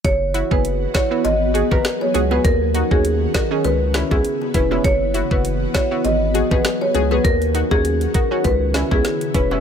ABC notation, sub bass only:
X:1
M:4/4
L:1/16
Q:"Swing 16ths" 1/4=100
K:C#m
V:1 name="Sub bass" clef=bass
F,,,3 F,,,3 z2 G,,,3 G,,, z2 C,,2 | D,,3 D,,3 z2 C,,3 C,, z2 E,,,2 | F,,,3 F,,,3 z2 G,,,3 G,,, z2 C,,2 | D,,3 D,,3 z2 C,,3 C,, z2 E,,,2 |]